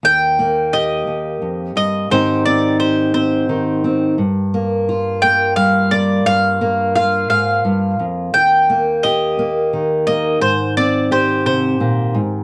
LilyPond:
<<
  \new Staff \with { instrumentName = "Mandolin" } { \time 6/8 \key ees \major \tempo 4. = 58 g''4 ees''4. ees''8 | c''8 d''8 c''8 c''4 r8 | r4. g''8 f''8 d''8 | f''4 f''8 f''4 r8 |
g''4 ees''4. ees''8 | c''8 d''8 c''8 c''4 r8 | }
  \new Staff \with { instrumentName = "Steel-string acoustic guitar" } { \time 6/8 \key ees \major << { r8 bes8 g'2 | <ees c' ees' g'>8 c'8 g'8 c'4 c'8 | r8 bes8 f'8 bes4 bes8 | r8 bes8 f'2 |
r8 bes8 g'8 bes4 bes8 | r8 c'8 g'2 | } \\ { ees,4. ees,8 f,8 g,8 | aes,2 ees4 | g,2 g4 | g,4. aes,8 g,8 f,8 |
ees,2 ees4 | aes,4. c8 bes,8 aes,8 | } >> }
>>